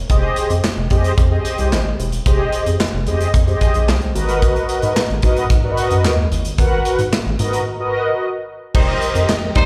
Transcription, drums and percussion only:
0.10 kick loud
0.10 closed hi-hat medium
0.36 closed hi-hat medium
0.50 closed hi-hat medium
0.64 snare loud
0.64 clap loud
0.90 kick medium
0.90 closed hi-hat medium
1.04 closed hi-hat medium
1.18 kick loud
1.18 closed hi-hat medium
1.45 closed hi-hat medium
1.58 closed hi-hat medium
1.73 snare loud
1.73 clap medium
2.00 closed hi-hat medium
2.12 closed hi-hat medium
2.26 kick loud
2.26 closed hi-hat medium
2.52 closed hi-hat medium
2.66 closed hi-hat medium
2.80 snare loud
2.80 clap medium
3.07 closed hi-hat medium
3.21 closed hi-hat medium
3.34 kick loud
3.34 closed hi-hat medium
3.48 closed hi-hat soft
3.61 kick medium
3.61 closed hi-hat medium
3.74 closed hi-hat medium
3.89 snare loud
3.89 clap medium
4.02 closed hi-hat soft
4.16 closed hi-hat medium
4.29 closed hi-hat medium
4.42 kick loud
4.42 closed hi-hat loud
4.56 closed hi-hat soft
4.69 closed hi-hat medium
4.82 closed hi-hat soft
4.97 snare loud
4.97 clap loud
5.10 closed hi-hat soft
5.22 kick medium
5.22 closed hi-hat medium
5.37 closed hi-hat medium
5.50 kick loud
5.50 closed hi-hat medium
5.77 closed hi-hat medium
5.91 closed hi-hat medium
6.05 snare medium
6.05 clap medium
6.32 closed hi-hat medium
6.45 closed hi-hat medium
6.58 kick loud
6.58 closed hi-hat medium
6.85 closed hi-hat medium
6.99 closed hi-hat medium
7.13 snare loud
7.13 clap medium
7.39 closed hi-hat medium
7.53 closed hi-hat medium
8.75 kick loud
8.75 crash medium
9.02 closed hi-hat medium
9.15 closed hi-hat medium
9.29 snare loud
9.29 clap medium
9.55 kick loud
9.55 closed hi-hat medium

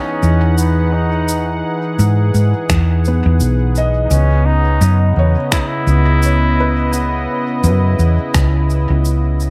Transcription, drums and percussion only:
0.23 cabasa soft
0.58 cabasa medium
1.29 cabasa medium
1.99 cabasa soft
2.35 cabasa soft
2.70 finger snap medium
2.70 kick loud
2.70 cabasa medium
3.05 cabasa soft
3.40 cabasa soft
3.75 cabasa soft
4.11 cabasa soft
4.81 cabasa medium
5.52 finger snap medium
5.52 kick loud
5.52 cabasa soft
5.87 cabasa soft
6.23 cabasa soft
6.93 cabasa soft
7.64 cabasa soft
7.99 cabasa soft
8.34 finger snap medium
8.34 kick loud
8.34 cabasa medium
8.70 cabasa soft
9.05 cabasa soft
9.40 cabasa soft

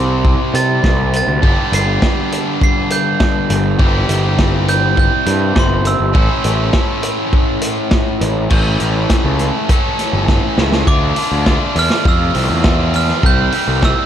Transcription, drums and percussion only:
0.25 kick loud
0.55 closed hi-hat medium
0.84 kick loud
0.84 snare medium
1.13 closed hi-hat medium
1.43 kick loud
1.73 closed hi-hat loud
2.02 kick loud
2.02 snare loud
2.32 closed hi-hat medium
2.61 kick loud
2.90 closed hi-hat loud
3.20 kick loud
3.20 snare loud
3.50 closed hi-hat medium
3.79 kick loud
4.09 closed hi-hat medium
4.39 kick medium
4.39 snare loud
4.68 closed hi-hat medium
4.97 kick loud
5.26 closed hi-hat medium
5.56 kick loud
5.56 snare loud
5.85 closed hi-hat medium
6.15 kick loud
6.44 closed hi-hat medium
6.73 kick loud
6.73 snare loud
7.03 closed hi-hat medium
7.33 kick loud
7.62 closed hi-hat loud
7.91 kick loud
7.91 snare loud
8.21 closed hi-hat medium
8.50 kick loud
8.50 crash loud
8.80 closed hi-hat medium
9.10 kick loud
9.10 snare loud
9.10 closed hi-hat medium
9.39 closed hi-hat medium
9.69 kick loud
9.69 closed hi-hat medium
9.99 snare soft
9.99 closed hi-hat medium
10.28 kick loud
10.28 snare medium
10.58 snare medium
10.72 snare medium
10.87 kick loud
11.16 open hi-hat medium
11.46 kick medium
11.46 snare loud
11.76 open hi-hat medium
11.90 snare medium
12.05 kick loud
12.35 open hi-hat medium
12.64 kick loud
12.64 snare loud
12.94 open hi-hat medium
13.08 snare soft
13.23 kick loud
13.52 open hi-hat medium
13.82 kick loud
13.82 snare loud

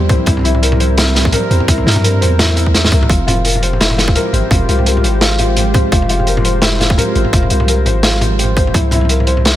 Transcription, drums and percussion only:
0.09 kick loud
0.09 closed hi-hat soft
0.09 mid tom medium
0.26 kick loud
0.26 closed hi-hat medium
0.37 mid tom medium
0.39 mid tom soft
0.41 mid tom soft
0.43 closed hi-hat medium
0.43 mid tom soft
0.55 mid tom medium
0.63 closed hi-hat medium
0.72 mid tom medium
0.80 closed hi-hat medium
0.98 snare loud
0.98 closed hi-hat loud
0.98 mid tom medium
1.15 snare medium
1.15 closed hi-hat medium
1.15 mid tom soft
1.21 kick loud
1.21 mid tom soft
1.27 mid tom soft
1.32 closed hi-hat medium
1.32 mid tom medium
1.51 closed hi-hat medium
1.60 mid tom medium
1.68 kick loud
1.68 closed hi-hat loud
1.78 mid tom medium
1.87 snare medium
1.91 closed hi-hat medium
1.96 mid tom medium
2.04 closed hi-hat medium
2.22 closed hi-hat medium
2.22 mid tom medium
2.39 snare loud
2.39 closed hi-hat medium
2.39 mid tom medium
2.57 closed hi-hat medium
2.66 kick medium
2.74 snare medium
2.74 closed hi-hat medium
2.84 snare medium
2.84 mid tom medium
2.92 kick loud
2.92 closed hi-hat medium
3.01 mid tom medium
3.09 kick loud
3.09 closed hi-hat medium
3.09 mid tom medium
3.28 closed hi-hat medium
3.28 mid tom medium
3.45 closed hi-hat medium
3.47 closed hi-hat medium
3.50 closed hi-hat medium
3.52 closed hi-hat soft
3.52 mid tom medium
3.63 closed hi-hat medium
3.73 mid tom medium
3.81 snare loud
3.81 closed hi-hat loud
3.90 mid tom medium
3.98 snare medium
3.98 closed hi-hat medium
4.08 kick loud
4.16 closed hi-hat medium
4.16 mid tom medium
4.34 closed hi-hat medium
4.34 mid tom medium
4.51 kick loud
4.51 closed hi-hat medium
4.51 mid tom medium
4.69 closed hi-hat medium
4.79 mid tom soft
4.86 closed hi-hat medium
4.97 mid tom soft
5.04 closed hi-hat medium
5.21 snare loud
5.21 closed hi-hat loud
5.39 closed hi-hat medium
5.39 mid tom medium
5.57 closed hi-hat loud
5.57 mid tom medium
5.74 kick loud
5.74 closed hi-hat medium
5.74 mid tom medium
5.92 kick loud
5.92 closed hi-hat medium
6.02 mid tom medium
6.09 closed hi-hat medium
6.20 mid tom soft
6.27 closed hi-hat medium
6.37 mid tom medium
6.45 closed hi-hat medium
6.62 snare loud
6.62 closed hi-hat loud
6.62 mid tom medium
6.80 snare medium
6.80 closed hi-hat medium
6.80 mid tom medium
6.90 kick loud
6.98 closed hi-hat loud
6.98 mid tom medium
7.15 closed hi-hat medium
7.25 mid tom medium
7.33 kick loud
7.33 closed hi-hat medium
7.43 mid tom soft
7.50 closed hi-hat medium
7.60 mid tom medium
7.68 closed hi-hat medium
7.86 closed hi-hat medium
7.86 mid tom medium
8.03 snare loud
8.03 closed hi-hat loud
8.03 mid tom medium
8.21 closed hi-hat medium
8.21 mid tom medium
8.39 closed hi-hat medium
8.43 mid tom medium
8.57 kick loud
8.57 closed hi-hat medium
8.67 mid tom medium
8.74 kick loud
8.74 closed hi-hat medium
8.74 mid tom medium
8.91 closed hi-hat medium
8.91 mid tom medium
8.96 mid tom medium
9.01 mid tom medium
9.05 mid tom soft
9.09 closed hi-hat medium
9.20 mid tom medium
9.27 closed hi-hat medium
9.37 mid tom medium
9.45 snare loud
9.45 closed hi-hat loud

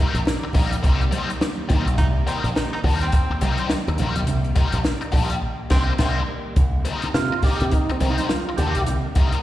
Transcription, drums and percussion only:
0.15 closed hi-hat soft
0.25 snare loud
0.25 muted conga soft
0.53 kick medium
0.53 open hi-hat medium
0.53 muted conga soft
0.53 low conga medium
0.72 closed hi-hat medium
0.84 kick loud
0.84 closed hi-hat medium
0.84 muted conga soft
1.01 closed hi-hat soft
1.12 closed hi-hat medium
1.12 muted conga soft
1.12 high conga medium
1.30 closed hi-hat soft
1.41 snare loud
1.41 high conga medium
1.70 kick medium
1.70 closed hi-hat medium
1.70 high conga medium
1.70 low conga medium
1.87 closed hi-hat medium
1.98 kick loud
1.98 closed hi-hat medium
1.98 muted conga soft
1.98 low conga medium
2.27 closed hi-hat medium
2.44 closed hi-hat soft
2.55 snare loud
2.55 muted conga soft
2.84 kick medium
2.84 open hi-hat medium
2.84 low conga medium
3.01 closed hi-hat medium
3.12 kick medium
3.12 closed hi-hat medium
3.12 muted conga soft
3.41 closed hi-hat medium
3.41 muted conga soft
3.41 high conga medium
3.58 closed hi-hat soft
3.70 snare loud
3.70 muted conga soft
3.70 high conga medium
3.87 closed hi-hat soft
3.98 closed hi-hat medium
3.98 muted conga soft
3.98 high conga medium
3.98 low conga medium
4.16 closed hi-hat medium
4.27 closed hi-hat medium
4.27 muted conga soft
4.27 low conga medium
4.44 closed hi-hat soft
4.56 kick medium
4.56 closed hi-hat medium
4.56 muted conga soft
4.72 closed hi-hat medium
4.84 snare loud
4.84 muted conga soft
5.01 closed hi-hat soft
5.12 kick medium
5.12 open hi-hat medium
5.12 muted conga soft
5.12 low conga medium
5.30 closed hi-hat medium
5.70 kick medium
5.70 snare loud
5.70 crash medium
5.98 kick medium
5.98 snare loud
5.98 crash medium
6.56 kick loud
6.56 closed hi-hat medium
6.56 muted conga soft
6.56 low conga medium
6.85 closed hi-hat medium
6.85 muted conga soft
7.02 closed hi-hat medium
7.14 snare loud
7.42 kick medium
7.42 open hi-hat medium
7.42 muted conga soft
7.42 low conga medium
7.60 closed hi-hat soft
7.71 kick medium
7.71 closed hi-hat medium
7.71 muted conga soft
7.89 closed hi-hat soft
8.00 closed hi-hat medium
8.00 muted conga soft
8.00 high conga medium
8.18 closed hi-hat soft
8.29 snare loud
8.29 muted conga soft
8.29 high conga medium
8.58 closed hi-hat medium
8.58 high conga medium
8.58 low conga medium
8.75 closed hi-hat medium
8.87 closed hi-hat medium
8.87 muted conga soft
8.87 low conga medium
9.15 kick medium
9.15 closed hi-hat medium
9.32 closed hi-hat soft

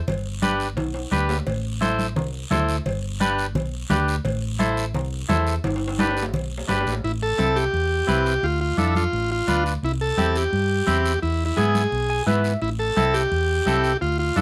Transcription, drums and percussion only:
0.08 cowbell loud
0.08 low conga medium
0.08 long guiro medium
0.42 cowbell medium
0.42 high conga medium
0.42 short guiro medium
0.60 short guiro medium
0.77 cowbell medium
0.77 low conga medium
0.77 high timbale medium
0.77 long guiro medium
0.94 high timbale medium
1.12 cowbell medium
1.12 high conga medium
1.12 short guiro medium
1.29 low timbale loud
1.29 short guiro medium
1.47 cowbell loud
1.47 low conga medium
1.47 long guiro medium
1.82 cowbell medium
1.82 high conga medium
1.82 short guiro medium
1.99 high conga medium
1.99 short guiro medium
2.16 cowbell medium
2.16 low conga medium
2.16 long guiro medium
2.51 cowbell medium
2.51 high conga medium
2.51 low conga medium
2.51 low timbale medium
2.51 short guiro medium
2.69 short guiro medium
2.86 cowbell loud
2.86 low conga medium
2.86 long guiro medium
3.21 cowbell medium
3.21 high conga medium
3.21 short guiro medium
3.38 short guiro medium
3.55 cowbell medium
3.55 low conga medium
3.55 long guiro medium
3.90 cowbell medium
3.90 high conga medium
3.90 low conga medium
3.90 low timbale medium
3.90 short guiro medium
4.08 short guiro medium
4.25 cowbell loud
4.25 low conga medium
4.25 long guiro medium
4.60 cowbell medium
4.60 high conga medium
4.60 short guiro medium
4.77 short guiro medium
4.94 cowbell medium
4.94 low conga medium
4.94 long guiro medium
5.29 cowbell medium
5.29 high conga medium
5.29 low conga medium
5.29 low timbale medium
5.29 short guiro medium
5.47 short guiro medium
5.64 cowbell loud
5.64 low conga medium
5.64 high timbale medium
5.64 long guiro medium
5.76 high timbale medium
5.88 high timbale medium
5.99 cowbell medium
5.99 high conga medium
5.99 high timbale medium
5.99 short guiro medium
6.11 low timbale medium
6.17 short guiro medium
6.22 low timbale medium
6.34 cowbell medium
6.34 low conga medium
6.34 long guiro medium
6.58 low timbale medium
6.69 cowbell medium
6.69 high conga medium
6.69 low timbale medium
6.69 short guiro medium
6.81 low timbale medium
6.87 short guiro medium
6.92 low timbale medium
7.05 long guiro medium
7.39 high conga medium
7.39 short guiro medium
7.56 short guiro medium
7.74 long guiro medium
8.08 high conga medium
8.08 short guiro medium
8.26 short guiro medium
8.43 long guiro medium
8.78 high conga medium
8.78 short guiro medium
8.95 high conga medium
8.95 short guiro medium
9.13 long guiro medium
9.48 high conga medium
9.48 short guiro medium
9.66 short guiro medium
9.84 long guiro medium
10.18 high conga medium
10.18 short guiro medium
10.36 short guiro medium
10.53 long guiro medium
10.87 high conga medium
10.87 short guiro medium
11.06 short guiro medium
11.23 long guiro medium
11.57 high conga medium
11.57 short guiro medium
11.75 high conga medium
11.75 short guiro medium
11.92 long guiro medium
12.27 high conga medium
12.27 short guiro medium
12.44 short guiro medium
12.62 long guiro medium
12.97 high conga medium
12.97 short guiro medium
13.14 short guiro medium
13.32 long guiro medium
13.66 high conga medium
13.66 short guiro medium
13.84 short guiro medium
14.02 long guiro medium
14.37 high conga medium
14.37 short guiro medium

